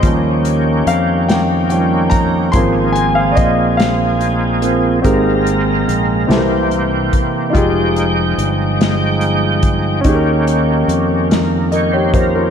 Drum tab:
HH |xxxxxx|xxxxxx|xxxxxx|xxxxxx|
SD |---o--|---o--|---o--|---o--|
BD |o----o|o-o---|o----o|o----o|

HH |xxxxxx|
SD |---o--|
BD |o----o|